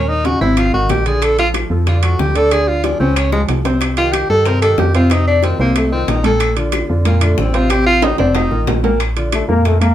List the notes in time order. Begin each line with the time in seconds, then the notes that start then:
Already playing: D#2 A#2 A#3 C#4 A#4
0.09 D#4
0.24 C#3 C#4 D#4 F#4, high bongo, high timbale
0.41 G#1 C3 C4 E4 C5, high bongo
0.57 F4, high bongo, high timbale, claves
0.73 G#1 D#3 D#4 F#4, high bongo
0.89 A#1 G4, high bongo, low bongo, high timbale, low timbale
1.05 D3 D4 G#4 D5, high bongo, high timbale
1.22 A4, high bongo, high timbale, claves
1.38 F3 F4 A4, high bongo, high timbale
1.54 high bongo, high timbale, claves
1.70 F2 F3 F4 A4
1.86 D3 D4 F4 D5, high bongo, high timbale
2.03 F3 F4 F#4 A4, high bongo, high timbale, claves
2.19 D2 G4, high bongo, low bongo
2.35 D3 D4 A4 D5, high bongo, high timbale
2.51 D3 D4 G#4 D5, high bongo, high timbale, claves
2.68 F4
2.84 F3 D4 F4 G#4, high bongo, high timbale
3.00 C#2 C#3 C4 C#4 C#5, high bongo
3.16 C#4, high bongo, high timbale, claves
3.32 F3 G#3 F4 G#4, high bongo
3.49 C2, high timbale, low timbale
3.65 C3 C4 C5, low bongo, high timbale
3.81 high bongo, high timbale, claves
3.97 D#3 D#4 F4 G4, high bongo, high timbale
4.13 G4, high bongo, high timbale, claves
4.29 G2 D#3 D#4 G4 A4
4.46 C3 C4 A#4 C5, high bongo, high timbale
4.62 D#3 D#4 G4 A4, high bongo, high timbale, claves
4.78 F2 G4, high bongo, low bongo, low timbale
4.94 C3 C4 F4 C5, high bongo, high timbale
5.10 C3 C4 D#4 C5, high bongo, high timbale, claves
5.28 D4
5.43 D#3 C4 D#4 F4, high bongo, high timbale
5.59 C2 C3 A#3 C4 C5, high bongo
5.76 A3, high bongo, high timbale, claves
5.92 D#3 C4 D#4 F4, high bongo
6.08 A#1 D#4, high bongo, low bongo, high timbale
6.24 A#2 A#3 A4, high bongo, high timbale
6.40 high bongo, high timbale, claves
6.56 D3 D4 F4, high bongo, high timbale
6.72 high bongo, high timbale, claves
6.89 F2 D3 D4 F4
7.05 A#2 A#3 F4 A#4, high bongo, high timbale
7.21 D3 A3 D4 F4, high bongo, high timbale, claves
7.38 A1 C4, high bongo, low bongo
7.54 C3 C4 F4 C5, high bongo, high timbale
7.70 C3 C4 G4 C5, high bongo, high timbale, claves
7.86 F4
8.02 D#3 D#4 G4, high bongo, high timbale
8.18 F1 C3 C4 D4 C5, high bongo, high timbale
8.35 D#4, high bongo, low timbale, claves
8.51 A1 D#3 D#4 F4, high bongo
8.67 A#1, high bongo, low bongo, low timbale
8.84 A#2 A#3 A#4, high bongo, low timbale
9.00 high bongo, high timbale, claves
9.16 D3 D4 F4, high bongo, high timbale
9.32 A3, high bongo, high timbale, claves
9.49 F2 A#2 A#3 A#4
9.65 A3, high bongo, high timbale
9.81 A#2 A#3 A#4, high bongo, high timbale, claves